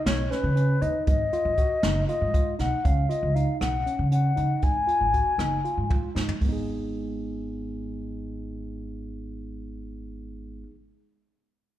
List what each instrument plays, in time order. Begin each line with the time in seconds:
Already playing: tine electric piano D#4
0.06 upright bass B1, flute C#5, snare, closed hi-hat
0.31 tine electric piano C#4, flute B4, snare, closed hi-hat
0.43 upright bass C#3
0.56 tine electric piano C#4, closed hi-hat
0.82 upright bass D#2, tine electric piano D#4, flute D#5, closed hi-hat
1.07 upright bass G#1, flute D#5, kick, closed hi-hat
1.33 tine electric piano F4, closed hi-hat
1.45 upright bass G#1
1.58 tine electric piano F#4, kick, closed hi-hat
1.83 upright bass F#1, tine electric piano D#4, snare, closed hi-hat
2.08 tine electric piano F4, flute D#5, closed hi-hat
2.21 upright bass G#2
2.34 tine electric piano F4, kick, closed hi-hat
2.59 upright bass B1, tine electric piano D#4, flute F#5, snare, closed hi-hat
2.84 upright bass C#2, tine electric piano C#4, flute F5, kick, closed hi-hat
3.09 tine electric piano F4, flute D#5, closed hi-hat
3.23 upright bass C#2
3.35 tine electric piano D#4, flute F5, closed hi-hat
3.60 upright bass B1, flute F#5, cross-stick, closed hi-hat
3.86 tine electric piano C#4, closed hi-hat
3.99 upright bass C#3
4.12 tine electric piano C#4, flute F#5, closed hi-hat
4.36 upright bass C#3, tine electric piano D#4, closed hi-hat
4.62 upright bass G#1, flute G#5, kick, closed hi-hat
4.87 tine electric piano F4, closed hi-hat
5.01 upright bass G#1
5.14 tine electric piano F#4, kick, closed hi-hat
5.38 upright bass F#1, tine electric piano D#4, cross-stick, closed hi-hat
5.65 tine electric piano F4, closed hi-hat
5.78 upright bass G#2
5.90 tine electric piano F4, kick, high tom
6.15 upright bass G#2, tine electric piano D#4, snare
6.29 floor tom
6.41 upright bass G#1, tine electric piano G#3 B3, kick, open hi-hat
6.49 tine electric piano D#4 G#4